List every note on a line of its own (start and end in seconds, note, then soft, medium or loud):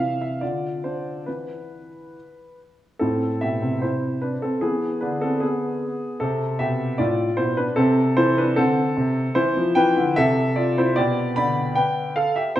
0.00 0.44 C3 soft
0.00 0.33 E3 soft
0.00 0.38 E4 soft
0.00 0.21 E5 medium
0.00 0.20 F5 medium
0.21 0.42 E5 medium
0.41 0.76 D3 soft
0.41 1.24 F4 soft
0.41 0.84 D5 medium
0.84 1.19 D4 soft
0.84 1.27 C5 medium
1.26 1.89 E3 soft
1.26 1.97 E4 soft
1.26 2.57 B4 medium
2.99 3.30 A2 medium
2.99 3.39 C4 medium
2.99 3.41 A4 medium
3.41 3.62 B2 soft
3.41 3.80 G4 medium
3.41 3.82 E5 medium
3.62 4.34 C3 medium
3.82 4.20 E4 soft
3.82 4.22 C5 medium
4.21 4.41 D4 soft
4.21 4.42 B4 medium
4.42 4.62 C4 soft
4.42 4.62 A4 medium
4.61 4.91 E3 medium
4.61 4.99 B3 medium
4.61 5.02 G#4 medium
5.01 5.88 D3 medium
5.01 5.21 D4 medium
5.01 5.21 B4 medium
5.21 5.41 C4 medium
5.21 5.42 A4 medium
5.40 6.17 B3 medium
5.40 6.20 G#4 medium
6.20 6.49 C3 medium
6.20 6.58 C4 medium
6.20 6.60 A4 medium
6.59 6.88 B2 medium
6.59 6.97 G4 medium
6.59 6.99 E5 medium
6.98 7.28 A2 medium
6.98 7.36 F4 medium
6.98 7.38 D5 medium
7.37 7.67 B2 medium
7.37 7.57 E4 medium
7.37 7.58 C5 medium
7.57 7.77 D4 medium
7.57 7.78 B4 medium
7.76 8.06 C3 medium
7.76 8.15 C4 medium
7.76 8.17 A4 medium
8.17 8.46 E3 medium
8.17 8.36 E4 medium
8.17 8.37 C5 medium
8.38 8.57 D4 medium
8.38 8.58 B4 medium
8.56 8.86 D3 medium
8.56 9.32 C4 medium
8.56 9.36 A4 medium
8.97 9.25 C3 medium
9.35 9.55 E3 medium
9.35 9.73 E4 medium
9.35 9.75 C5 medium
9.57 9.75 F3 medium
9.75 9.95 E3 medium
9.75 10.14 B4 medium
9.75 10.16 G5 loud
9.97 10.16 D3 medium
10.16 10.75 C3 medium
10.16 10.55 A4 medium
10.16 10.57 E5 loud
10.56 10.76 F4 medium
10.56 10.77 D5 medium
10.78 10.97 E4 medium
10.78 10.98 C5 medium
10.96 11.26 B2 medium
10.96 11.34 G4 medium
10.96 11.36 D5 loud
11.36 12.23 D3 medium
11.36 11.73 D5 medium
11.36 11.75 B5 loud
11.75 12.13 B4 medium
11.75 12.15 G5 medium
12.16 12.35 A4 medium
12.16 12.36 F5 medium
12.36 12.55 G4 medium
12.36 12.56 E5 medium
12.56 12.60 C3 medium
12.56 12.60 E4 medium
12.56 12.60 C5 medium